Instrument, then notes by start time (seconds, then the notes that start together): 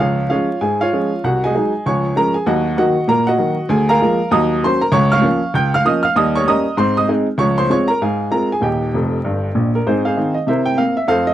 upright piano
0.00 C#2 F3 F4 C#5 F5
0.30 F3 G#3 C#4 F4 C#5 F5
0.61 G#2 G#4 G#5
0.81 F4 C#5 F5
0.93 F3 G#3 C#4
1.24 C2 F#4 F#5
1.44 G#4 D#5 G#5
1.54 F#3 G#3 D#4
1.86 C#2 F3 C#5 G#5 C#6
2.16 F3 G#3 C#4 A#4 A#5
2.34 G#4 G#5
2.46 D#2 F#3 F#4 D#5 F#5
2.77 D#3 F#3 A#3 F#4 D#5 F#5
3.08 A#2 A#4 A#5
3.27 F#4 D#5 F#5
3.38 D#3 F#3 A#3
3.69 D2 G#4 G#5
3.89 A#4 F5 A#5
4.02 F3 G#3 A#3
4.31 D#2 F#3 D#5 A#5 D#6
4.64 F#3 A#3 C#4 C5 C6
4.81 A#4 A#5
4.92 C#2 C#5 C#6
5.12 F5 C#6 F6
5.21 F3 A#3 C#4
5.54 C#2 G5 G6
5.74 F5 F6
5.85 F3 A#3 C#4 D#5 D#6
6.03 F5 F6
6.16 D#2 G3 D#5 D#6
6.35 C#5 C#6
6.47 G3 A#3 C#4 D#5 A#5 D#6
6.77 G#2 C4 C5 C6
6.97 D#5 D#6
7.09 G#3 C4 D#4
7.38 C#2 F3 C#5 C#6
7.58 C5 C6
7.70 G#3 C4 F4 C#5 C#6
7.88 A#4 A#5
8.02 G#2 G#4 F5 G#5
8.31 G#3 C4 F4 A#4 A#5
8.52 G#4 G#5
8.61 D#1 D#2 G4 D#5 G5
8.94 F1 F2
9.25 G1 G2
9.55 A#1 A#2
9.75 A#4
9.87 G#2 C4 D#4 G#4 C5
10.05 G#4 C5 F5
10.17 D#3 C4 D#4
10.34 D#5
10.47 C3 E4 A#4 C5 E5
10.65 G5
10.77 A#3 C4 F5
10.97 E5
11.08 F2 A3 A4 C5 F5
11.27 D#5